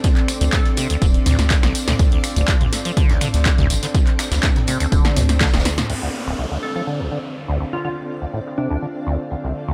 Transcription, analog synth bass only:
\new Staff \with { instrumentName = "Analog synth bass" } { \clef bass \time 4/4 \key d \minor \tempo 4 = 123 r8. d,16 r4 d,,16 r16 d,16 d,16 r16 c,16 r8 | d,16 r8 d,16 r4. r16 d,16 r16 d,16 a,,16 r16 | r8. d,16 r4 d,,16 r16 d,8 r16 d,,16 r8 | r1 |
r1 | }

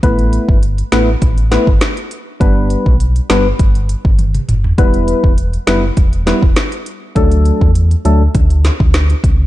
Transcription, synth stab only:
\new Staff \with { instrumentName = "Synth stab" } { \time 4/4 \key e \dorian \tempo 4 = 101 <a b e' b'>4 r8 <a b e' b'>8 r8 <a b e' b'>8 r4 | <g b d' b'>4 r8 <g b d' b'>8 r2 | <g b e' b'>4 r8 <g b e' b'>8 r8 <g b e' b'>8 r4 | <fis a d' a'>4 r8 <fis a d' a'>8 r2 | }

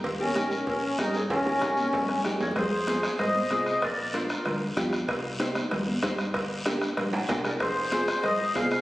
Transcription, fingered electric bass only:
\new Staff \with { instrumentName = "Fingered electric bass" } { \clef bass \time 4/4 \key ees \major \tempo 4 = 190 ees,4 bes,,4 bes,,4 g,4 | ees,4 bes,,4 bes,,4 g,8 f,8 | f,2 aes,4 c,4 | bes,,2 d,4 f,4 |
c,2 ees,4 g,4 | g,,2 bes,,4 c,4 | f,,2 aes,,4 c,4 | }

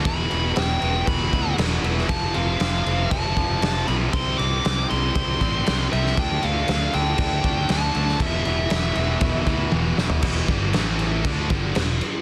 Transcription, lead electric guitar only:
\new Staff \with { instrumentName = "Lead electric guitar" } { \time 4/4 \key e \phrygian \tempo 4 = 118 b''4 g''4 b''4 r4 | a''8 f''4. a''4. b''8 | c'''8 d'''4 c'''2 e''8 | g''8 f''4 g''4. a''4 |
e''2. r4 | r1 | }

